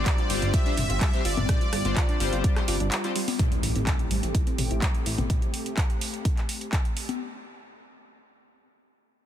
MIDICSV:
0, 0, Header, 1, 9, 480
1, 0, Start_track
1, 0, Key_signature, 0, "minor"
1, 0, Tempo, 476190
1, 1501, Time_signature, 4, 2, 24, 8
1, 9333, End_track
2, 0, Start_track
2, 0, Title_t, "Synth texture"
2, 0, Program_c, 0, 99
2, 0, Note_on_c, 0, 86, 91
2, 3432, Note_off_c, 0, 86, 0
2, 9333, End_track
3, 0, Start_track
3, 0, Title_t, "Supersaw synth"
3, 0, Program_c, 1, 81
3, 0, Note_on_c, 1, 74, 117
3, 501, Note_off_c, 1, 74, 0
3, 542, Note_on_c, 1, 76, 125
3, 1262, Note_on_c, 1, 74, 113
3, 1283, Note_off_c, 1, 76, 0
3, 2901, Note_off_c, 1, 74, 0
3, 9333, End_track
4, 0, Start_track
4, 0, Title_t, "Synth pluck"
4, 0, Program_c, 2, 84
4, 184, Note_on_c, 2, 77, 53
4, 185, Note_on_c, 2, 65, 76
4, 265, Note_off_c, 2, 65, 0
4, 265, Note_off_c, 2, 77, 0
4, 301, Note_on_c, 2, 55, 80
4, 301, Note_on_c, 2, 67, 57
4, 358, Note_off_c, 2, 55, 0
4, 358, Note_off_c, 2, 67, 0
4, 541, Note_on_c, 2, 65, 86
4, 541, Note_on_c, 2, 77, 59
4, 598, Note_off_c, 2, 65, 0
4, 598, Note_off_c, 2, 77, 0
4, 664, Note_on_c, 2, 62, 77
4, 664, Note_on_c, 2, 74, 53
4, 745, Note_off_c, 2, 62, 0
4, 745, Note_off_c, 2, 74, 0
4, 905, Note_on_c, 2, 65, 77
4, 905, Note_on_c, 2, 77, 55
4, 985, Note_off_c, 2, 65, 0
4, 985, Note_off_c, 2, 77, 0
4, 1021, Note_on_c, 2, 55, 87
4, 1021, Note_on_c, 2, 67, 61
4, 1078, Note_off_c, 2, 55, 0
4, 1078, Note_off_c, 2, 67, 0
4, 1261, Note_on_c, 2, 65, 81
4, 1261, Note_on_c, 2, 77, 57
4, 1318, Note_off_c, 2, 65, 0
4, 1318, Note_off_c, 2, 77, 0
4, 1385, Note_on_c, 2, 62, 76
4, 1385, Note_on_c, 2, 74, 56
4, 1465, Note_off_c, 2, 62, 0
4, 1465, Note_off_c, 2, 74, 0
4, 1624, Note_on_c, 2, 65, 81
4, 1624, Note_on_c, 2, 77, 57
4, 1705, Note_off_c, 2, 65, 0
4, 1705, Note_off_c, 2, 77, 0
4, 1741, Note_on_c, 2, 55, 78
4, 1741, Note_on_c, 2, 67, 54
4, 1798, Note_off_c, 2, 55, 0
4, 1798, Note_off_c, 2, 67, 0
4, 1981, Note_on_c, 2, 65, 85
4, 1981, Note_on_c, 2, 77, 60
4, 2038, Note_off_c, 2, 65, 0
4, 2038, Note_off_c, 2, 77, 0
4, 2105, Note_on_c, 2, 62, 76
4, 2105, Note_on_c, 2, 74, 55
4, 2185, Note_off_c, 2, 62, 0
4, 2185, Note_off_c, 2, 74, 0
4, 2345, Note_on_c, 2, 65, 79
4, 2345, Note_on_c, 2, 77, 55
4, 2425, Note_off_c, 2, 77, 0
4, 2426, Note_off_c, 2, 65, 0
4, 2461, Note_on_c, 2, 55, 84
4, 2461, Note_on_c, 2, 67, 62
4, 2518, Note_off_c, 2, 55, 0
4, 2518, Note_off_c, 2, 67, 0
4, 2700, Note_on_c, 2, 77, 57
4, 2701, Note_on_c, 2, 65, 82
4, 2758, Note_off_c, 2, 65, 0
4, 2758, Note_off_c, 2, 77, 0
4, 2824, Note_on_c, 2, 62, 76
4, 2824, Note_on_c, 2, 74, 52
4, 2905, Note_off_c, 2, 62, 0
4, 2905, Note_off_c, 2, 74, 0
4, 3064, Note_on_c, 2, 65, 81
4, 3064, Note_on_c, 2, 77, 54
4, 3145, Note_off_c, 2, 65, 0
4, 3145, Note_off_c, 2, 77, 0
4, 3181, Note_on_c, 2, 55, 83
4, 3181, Note_on_c, 2, 67, 58
4, 3238, Note_off_c, 2, 55, 0
4, 3238, Note_off_c, 2, 67, 0
4, 3421, Note_on_c, 2, 55, 83
4, 3478, Note_off_c, 2, 55, 0
4, 3661, Note_on_c, 2, 64, 78
4, 3718, Note_off_c, 2, 64, 0
4, 3785, Note_on_c, 2, 60, 77
4, 3866, Note_off_c, 2, 60, 0
4, 4025, Note_on_c, 2, 64, 75
4, 4105, Note_off_c, 2, 64, 0
4, 4141, Note_on_c, 2, 55, 79
4, 4198, Note_off_c, 2, 55, 0
4, 4381, Note_on_c, 2, 64, 87
4, 4438, Note_off_c, 2, 64, 0
4, 4505, Note_on_c, 2, 60, 76
4, 4585, Note_off_c, 2, 60, 0
4, 4745, Note_on_c, 2, 64, 76
4, 4825, Note_off_c, 2, 64, 0
4, 4861, Note_on_c, 2, 55, 84
4, 4918, Note_off_c, 2, 55, 0
4, 5101, Note_on_c, 2, 64, 80
4, 5158, Note_off_c, 2, 64, 0
4, 5225, Note_on_c, 2, 60, 77
4, 5305, Note_off_c, 2, 60, 0
4, 9333, End_track
5, 0, Start_track
5, 0, Title_t, "Analog polysynth"
5, 0, Program_c, 3, 90
5, 0, Note_on_c, 3, 55, 80
5, 0, Note_on_c, 3, 60, 75
5, 0, Note_on_c, 3, 62, 75
5, 0, Note_on_c, 3, 65, 76
5, 0, Note_on_c, 3, 67, 77
5, 0, Note_on_c, 3, 72, 89
5, 273, Note_off_c, 3, 55, 0
5, 273, Note_off_c, 3, 60, 0
5, 273, Note_off_c, 3, 65, 0
5, 273, Note_off_c, 3, 67, 0
5, 274, Note_off_c, 3, 62, 0
5, 274, Note_off_c, 3, 72, 0
5, 301, Note_on_c, 3, 55, 97
5, 301, Note_on_c, 3, 60, 93
5, 301, Note_on_c, 3, 62, 90
5, 301, Note_on_c, 3, 65, 89
5, 301, Note_on_c, 3, 67, 94
5, 301, Note_on_c, 3, 72, 109
5, 635, Note_off_c, 3, 55, 0
5, 635, Note_off_c, 3, 60, 0
5, 635, Note_off_c, 3, 62, 0
5, 635, Note_off_c, 3, 65, 0
5, 635, Note_off_c, 3, 67, 0
5, 635, Note_off_c, 3, 72, 0
5, 664, Note_on_c, 3, 60, 86
5, 664, Note_on_c, 3, 67, 85
5, 665, Note_on_c, 3, 55, 91
5, 665, Note_on_c, 3, 62, 85
5, 665, Note_on_c, 3, 65, 87
5, 665, Note_on_c, 3, 72, 105
5, 740, Note_off_c, 3, 55, 0
5, 740, Note_off_c, 3, 60, 0
5, 740, Note_off_c, 3, 62, 0
5, 740, Note_off_c, 3, 65, 0
5, 740, Note_off_c, 3, 67, 0
5, 740, Note_off_c, 3, 72, 0
5, 1145, Note_on_c, 3, 55, 97
5, 1145, Note_on_c, 3, 60, 89
5, 1145, Note_on_c, 3, 62, 89
5, 1145, Note_on_c, 3, 65, 89
5, 1145, Note_on_c, 3, 67, 86
5, 1145, Note_on_c, 3, 72, 108
5, 1220, Note_off_c, 3, 55, 0
5, 1220, Note_off_c, 3, 60, 0
5, 1220, Note_off_c, 3, 62, 0
5, 1220, Note_off_c, 3, 65, 0
5, 1220, Note_off_c, 3, 67, 0
5, 1220, Note_off_c, 3, 72, 0
5, 1501, Note_on_c, 3, 55, 83
5, 1501, Note_on_c, 3, 60, 81
5, 1501, Note_on_c, 3, 62, 77
5, 1501, Note_on_c, 3, 65, 76
5, 1501, Note_on_c, 3, 67, 79
5, 1501, Note_on_c, 3, 72, 92
5, 1581, Note_off_c, 3, 55, 0
5, 1581, Note_off_c, 3, 60, 0
5, 1581, Note_off_c, 3, 62, 0
5, 1581, Note_off_c, 3, 65, 0
5, 1581, Note_off_c, 3, 67, 0
5, 1581, Note_off_c, 3, 72, 0
5, 1864, Note_on_c, 3, 55, 80
5, 1864, Note_on_c, 3, 60, 74
5, 1864, Note_on_c, 3, 62, 73
5, 1864, Note_on_c, 3, 65, 73
5, 1864, Note_on_c, 3, 67, 72
5, 1865, Note_on_c, 3, 72, 91
5, 2193, Note_off_c, 3, 55, 0
5, 2193, Note_off_c, 3, 60, 0
5, 2193, Note_off_c, 3, 62, 0
5, 2193, Note_off_c, 3, 65, 0
5, 2193, Note_off_c, 3, 67, 0
5, 2193, Note_off_c, 3, 72, 0
5, 2221, Note_on_c, 3, 55, 102
5, 2221, Note_on_c, 3, 60, 93
5, 2221, Note_on_c, 3, 62, 93
5, 2221, Note_on_c, 3, 65, 91
5, 2221, Note_on_c, 3, 67, 94
5, 2221, Note_on_c, 3, 72, 115
5, 2555, Note_off_c, 3, 55, 0
5, 2555, Note_off_c, 3, 60, 0
5, 2555, Note_off_c, 3, 62, 0
5, 2555, Note_off_c, 3, 65, 0
5, 2555, Note_off_c, 3, 67, 0
5, 2555, Note_off_c, 3, 72, 0
5, 2585, Note_on_c, 3, 55, 97
5, 2585, Note_on_c, 3, 60, 84
5, 2585, Note_on_c, 3, 62, 81
5, 2585, Note_on_c, 3, 65, 87
5, 2585, Note_on_c, 3, 67, 85
5, 2585, Note_on_c, 3, 72, 101
5, 2660, Note_off_c, 3, 55, 0
5, 2660, Note_off_c, 3, 60, 0
5, 2660, Note_off_c, 3, 62, 0
5, 2660, Note_off_c, 3, 65, 0
5, 2660, Note_off_c, 3, 67, 0
5, 2660, Note_off_c, 3, 72, 0
5, 2701, Note_on_c, 3, 55, 78
5, 2701, Note_on_c, 3, 60, 73
5, 2701, Note_on_c, 3, 62, 73
5, 2701, Note_on_c, 3, 65, 74
5, 2701, Note_on_c, 3, 67, 78
5, 2701, Note_on_c, 3, 74, 86
5, 2781, Note_off_c, 3, 55, 0
5, 2781, Note_off_c, 3, 60, 0
5, 2781, Note_off_c, 3, 62, 0
5, 2781, Note_off_c, 3, 65, 0
5, 2781, Note_off_c, 3, 67, 0
5, 2781, Note_off_c, 3, 74, 0
5, 3065, Note_on_c, 3, 55, 88
5, 3065, Note_on_c, 3, 60, 81
5, 3065, Note_on_c, 3, 62, 78
5, 3065, Note_on_c, 3, 65, 80
5, 3065, Note_on_c, 3, 67, 83
5, 3065, Note_on_c, 3, 72, 99
5, 3140, Note_off_c, 3, 55, 0
5, 3140, Note_off_c, 3, 60, 0
5, 3140, Note_off_c, 3, 62, 0
5, 3140, Note_off_c, 3, 65, 0
5, 3140, Note_off_c, 3, 67, 0
5, 3140, Note_off_c, 3, 72, 0
5, 9333, End_track
6, 0, Start_track
6, 0, Title_t, "Analog synth pad"
6, 0, Program_c, 4, 89
6, 0, Note_on_c, 4, 55, 83
6, 0, Note_on_c, 4, 60, 76
6, 0, Note_on_c, 4, 65, 93
6, 3381, Note_off_c, 4, 60, 0
6, 3383, Note_off_c, 4, 55, 0
6, 3383, Note_off_c, 4, 65, 0
6, 3421, Note_on_c, 4, 57, 80
6, 3421, Note_on_c, 4, 60, 71
6, 3421, Note_on_c, 4, 67, 86
6, 7223, Note_off_c, 4, 57, 0
6, 7223, Note_off_c, 4, 60, 0
6, 7223, Note_off_c, 4, 67, 0
6, 9333, End_track
7, 0, Start_track
7, 0, Title_t, "Analog synth bass"
7, 0, Program_c, 5, 38
7, 301, Note_on_c, 5, 31, 88
7, 402, Note_off_c, 5, 31, 0
7, 425, Note_on_c, 5, 31, 79
7, 520, Note_off_c, 5, 31, 0
7, 781, Note_on_c, 5, 31, 93
7, 883, Note_off_c, 5, 31, 0
7, 905, Note_on_c, 5, 31, 85
7, 1000, Note_off_c, 5, 31, 0
7, 1261, Note_on_c, 5, 31, 97
7, 1363, Note_off_c, 5, 31, 0
7, 1385, Note_on_c, 5, 31, 84
7, 1480, Note_off_c, 5, 31, 0
7, 1741, Note_on_c, 5, 31, 94
7, 1843, Note_off_c, 5, 31, 0
7, 1864, Note_on_c, 5, 31, 84
7, 1960, Note_off_c, 5, 31, 0
7, 2221, Note_on_c, 5, 31, 96
7, 2322, Note_off_c, 5, 31, 0
7, 2344, Note_on_c, 5, 31, 78
7, 2440, Note_off_c, 5, 31, 0
7, 2701, Note_on_c, 5, 31, 90
7, 2802, Note_off_c, 5, 31, 0
7, 2825, Note_on_c, 5, 31, 87
7, 2920, Note_off_c, 5, 31, 0
7, 3661, Note_on_c, 5, 33, 91
7, 3762, Note_off_c, 5, 33, 0
7, 3785, Note_on_c, 5, 33, 79
7, 3880, Note_off_c, 5, 33, 0
7, 4141, Note_on_c, 5, 33, 92
7, 4242, Note_off_c, 5, 33, 0
7, 4264, Note_on_c, 5, 33, 78
7, 4360, Note_off_c, 5, 33, 0
7, 4621, Note_on_c, 5, 33, 96
7, 4722, Note_off_c, 5, 33, 0
7, 4745, Note_on_c, 5, 33, 82
7, 4840, Note_off_c, 5, 33, 0
7, 5101, Note_on_c, 5, 33, 94
7, 5202, Note_off_c, 5, 33, 0
7, 5225, Note_on_c, 5, 33, 79
7, 5320, Note_off_c, 5, 33, 0
7, 9333, End_track
8, 0, Start_track
8, 0, Title_t, "Impact"
8, 0, Program_c, 6, 103
8, 3421, Note_on_c, 6, 60, 74
8, 5341, Note_off_c, 6, 60, 0
8, 9333, End_track
9, 0, Start_track
9, 0, Title_t, "Drums"
9, 59, Note_on_c, 9, 39, 123
9, 61, Note_on_c, 9, 36, 109
9, 61, Note_on_c, 9, 42, 105
9, 160, Note_off_c, 9, 39, 0
9, 162, Note_off_c, 9, 36, 0
9, 162, Note_off_c, 9, 42, 0
9, 184, Note_on_c, 9, 42, 40
9, 285, Note_off_c, 9, 42, 0
9, 301, Note_on_c, 9, 46, 104
9, 402, Note_off_c, 9, 46, 0
9, 425, Note_on_c, 9, 42, 43
9, 526, Note_off_c, 9, 42, 0
9, 541, Note_on_c, 9, 36, 116
9, 541, Note_on_c, 9, 42, 100
9, 642, Note_off_c, 9, 36, 0
9, 642, Note_off_c, 9, 42, 0
9, 665, Note_on_c, 9, 42, 42
9, 766, Note_off_c, 9, 42, 0
9, 781, Note_on_c, 9, 45, 83
9, 781, Note_on_c, 9, 46, 107
9, 881, Note_off_c, 9, 46, 0
9, 882, Note_off_c, 9, 45, 0
9, 905, Note_on_c, 9, 42, 44
9, 1005, Note_off_c, 9, 42, 0
9, 1019, Note_on_c, 9, 39, 120
9, 1021, Note_on_c, 9, 36, 101
9, 1021, Note_on_c, 9, 42, 94
9, 1120, Note_off_c, 9, 39, 0
9, 1122, Note_off_c, 9, 36, 0
9, 1122, Note_off_c, 9, 42, 0
9, 1144, Note_on_c, 9, 42, 40
9, 1245, Note_off_c, 9, 42, 0
9, 1261, Note_on_c, 9, 46, 106
9, 1361, Note_off_c, 9, 46, 0
9, 1385, Note_on_c, 9, 42, 43
9, 1385, Note_on_c, 9, 45, 80
9, 1385, Note_on_c, 9, 63, 98
9, 1486, Note_off_c, 9, 42, 0
9, 1486, Note_off_c, 9, 45, 0
9, 1486, Note_off_c, 9, 63, 0
9, 1501, Note_on_c, 9, 36, 114
9, 1501, Note_on_c, 9, 37, 92
9, 1501, Note_on_c, 9, 42, 99
9, 1501, Note_on_c, 9, 45, 89
9, 1602, Note_off_c, 9, 36, 0
9, 1602, Note_off_c, 9, 37, 0
9, 1602, Note_off_c, 9, 42, 0
9, 1602, Note_off_c, 9, 45, 0
9, 1624, Note_on_c, 9, 42, 43
9, 1725, Note_off_c, 9, 42, 0
9, 1741, Note_on_c, 9, 37, 72
9, 1741, Note_on_c, 9, 46, 109
9, 1842, Note_off_c, 9, 37, 0
9, 1842, Note_off_c, 9, 46, 0
9, 1865, Note_on_c, 9, 42, 42
9, 1865, Note_on_c, 9, 63, 67
9, 1965, Note_off_c, 9, 42, 0
9, 1966, Note_off_c, 9, 63, 0
9, 1980, Note_on_c, 9, 39, 127
9, 1981, Note_on_c, 9, 36, 103
9, 1981, Note_on_c, 9, 42, 105
9, 2081, Note_off_c, 9, 39, 0
9, 2082, Note_off_c, 9, 36, 0
9, 2082, Note_off_c, 9, 42, 0
9, 2105, Note_on_c, 9, 42, 41
9, 2206, Note_off_c, 9, 42, 0
9, 2221, Note_on_c, 9, 46, 105
9, 2322, Note_off_c, 9, 46, 0
9, 2345, Note_on_c, 9, 42, 41
9, 2446, Note_off_c, 9, 42, 0
9, 2461, Note_on_c, 9, 36, 118
9, 2461, Note_on_c, 9, 42, 101
9, 2562, Note_off_c, 9, 36, 0
9, 2562, Note_off_c, 9, 42, 0
9, 2584, Note_on_c, 9, 39, 39
9, 2585, Note_on_c, 9, 37, 91
9, 2585, Note_on_c, 9, 42, 41
9, 2684, Note_off_c, 9, 39, 0
9, 2686, Note_off_c, 9, 37, 0
9, 2686, Note_off_c, 9, 42, 0
9, 2701, Note_on_c, 9, 46, 109
9, 2802, Note_off_c, 9, 46, 0
9, 2825, Note_on_c, 9, 42, 43
9, 2926, Note_off_c, 9, 42, 0
9, 2940, Note_on_c, 9, 39, 127
9, 2941, Note_on_c, 9, 42, 101
9, 3041, Note_off_c, 9, 39, 0
9, 3042, Note_off_c, 9, 42, 0
9, 3065, Note_on_c, 9, 42, 40
9, 3166, Note_off_c, 9, 42, 0
9, 3181, Note_on_c, 9, 46, 108
9, 3282, Note_off_c, 9, 46, 0
9, 3305, Note_on_c, 9, 46, 64
9, 3305, Note_on_c, 9, 63, 97
9, 3406, Note_off_c, 9, 46, 0
9, 3406, Note_off_c, 9, 63, 0
9, 3421, Note_on_c, 9, 36, 117
9, 3421, Note_on_c, 9, 42, 99
9, 3421, Note_on_c, 9, 45, 95
9, 3522, Note_off_c, 9, 36, 0
9, 3522, Note_off_c, 9, 42, 0
9, 3522, Note_off_c, 9, 45, 0
9, 3545, Note_on_c, 9, 42, 41
9, 3646, Note_off_c, 9, 42, 0
9, 3661, Note_on_c, 9, 46, 109
9, 3762, Note_off_c, 9, 46, 0
9, 3785, Note_on_c, 9, 42, 41
9, 3886, Note_off_c, 9, 42, 0
9, 3900, Note_on_c, 9, 39, 127
9, 3901, Note_on_c, 9, 36, 103
9, 3901, Note_on_c, 9, 42, 98
9, 4001, Note_off_c, 9, 39, 0
9, 4002, Note_off_c, 9, 36, 0
9, 4002, Note_off_c, 9, 42, 0
9, 4025, Note_on_c, 9, 42, 42
9, 4126, Note_off_c, 9, 42, 0
9, 4141, Note_on_c, 9, 46, 102
9, 4242, Note_off_c, 9, 46, 0
9, 4265, Note_on_c, 9, 42, 41
9, 4366, Note_off_c, 9, 42, 0
9, 4381, Note_on_c, 9, 36, 114
9, 4381, Note_on_c, 9, 42, 94
9, 4482, Note_off_c, 9, 36, 0
9, 4482, Note_off_c, 9, 42, 0
9, 4505, Note_on_c, 9, 42, 41
9, 4606, Note_off_c, 9, 42, 0
9, 4621, Note_on_c, 9, 45, 83
9, 4621, Note_on_c, 9, 46, 109
9, 4722, Note_off_c, 9, 45, 0
9, 4722, Note_off_c, 9, 46, 0
9, 4745, Note_on_c, 9, 42, 42
9, 4846, Note_off_c, 9, 42, 0
9, 4860, Note_on_c, 9, 39, 125
9, 4861, Note_on_c, 9, 36, 106
9, 4861, Note_on_c, 9, 42, 94
9, 4960, Note_off_c, 9, 39, 0
9, 4962, Note_off_c, 9, 36, 0
9, 4962, Note_off_c, 9, 42, 0
9, 4985, Note_on_c, 9, 42, 39
9, 5085, Note_off_c, 9, 42, 0
9, 5101, Note_on_c, 9, 46, 105
9, 5202, Note_off_c, 9, 46, 0
9, 5225, Note_on_c, 9, 42, 40
9, 5225, Note_on_c, 9, 45, 83
9, 5225, Note_on_c, 9, 63, 97
9, 5326, Note_off_c, 9, 42, 0
9, 5326, Note_off_c, 9, 45, 0
9, 5326, Note_off_c, 9, 63, 0
9, 5341, Note_on_c, 9, 36, 121
9, 5341, Note_on_c, 9, 42, 91
9, 5341, Note_on_c, 9, 45, 95
9, 5442, Note_off_c, 9, 36, 0
9, 5442, Note_off_c, 9, 42, 0
9, 5442, Note_off_c, 9, 45, 0
9, 5465, Note_on_c, 9, 42, 38
9, 5566, Note_off_c, 9, 42, 0
9, 5581, Note_on_c, 9, 46, 106
9, 5682, Note_off_c, 9, 46, 0
9, 5705, Note_on_c, 9, 42, 39
9, 5806, Note_off_c, 9, 42, 0
9, 5820, Note_on_c, 9, 39, 120
9, 5821, Note_on_c, 9, 36, 110
9, 5822, Note_on_c, 9, 42, 97
9, 5921, Note_off_c, 9, 39, 0
9, 5922, Note_off_c, 9, 36, 0
9, 5922, Note_off_c, 9, 42, 0
9, 5945, Note_on_c, 9, 42, 38
9, 6046, Note_off_c, 9, 42, 0
9, 6062, Note_on_c, 9, 46, 106
9, 6163, Note_off_c, 9, 46, 0
9, 6185, Note_on_c, 9, 42, 39
9, 6286, Note_off_c, 9, 42, 0
9, 6301, Note_on_c, 9, 36, 115
9, 6302, Note_on_c, 9, 42, 92
9, 6402, Note_off_c, 9, 36, 0
9, 6403, Note_off_c, 9, 42, 0
9, 6424, Note_on_c, 9, 39, 36
9, 6425, Note_on_c, 9, 42, 38
9, 6525, Note_off_c, 9, 39, 0
9, 6526, Note_off_c, 9, 42, 0
9, 6541, Note_on_c, 9, 46, 109
9, 6642, Note_off_c, 9, 46, 0
9, 6665, Note_on_c, 9, 42, 39
9, 6766, Note_off_c, 9, 42, 0
9, 6781, Note_on_c, 9, 36, 104
9, 6781, Note_on_c, 9, 39, 121
9, 6782, Note_on_c, 9, 42, 88
9, 6881, Note_off_c, 9, 39, 0
9, 6882, Note_off_c, 9, 36, 0
9, 6883, Note_off_c, 9, 42, 0
9, 6906, Note_on_c, 9, 42, 38
9, 7007, Note_off_c, 9, 42, 0
9, 7022, Note_on_c, 9, 46, 103
9, 7123, Note_off_c, 9, 46, 0
9, 7145, Note_on_c, 9, 63, 94
9, 7146, Note_on_c, 9, 42, 39
9, 7246, Note_off_c, 9, 63, 0
9, 7247, Note_off_c, 9, 42, 0
9, 9333, End_track
0, 0, End_of_file